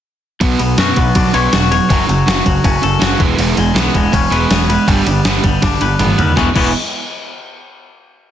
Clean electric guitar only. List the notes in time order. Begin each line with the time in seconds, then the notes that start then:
0.41 B2
0.59 B3
0.78 F#4
0.97 B3
1.15 D4
1.34 C#5
1.53 F#4
1.71 C#5
1.90 F#3
2.09 F#3
2.27 F#4
2.46 F#3
2.65 C#4
2.83 A4
3.02 F#4
3.20 E2
3.39 E2
3.58 G#3
3.77 B3
3.96 G#3
4.14 C#4
4.32 B4
4.50 B3
4.69 B4
4.88 G3
5.07 G3
5.25 B3
5.44 G3
5.63 D4
5.82 B4
6.00 B3
6.18 B4
6.36 E2 E3 G#3 B3 C#4 B4
6.55 E2 E3 G#3 B3 C#4 B4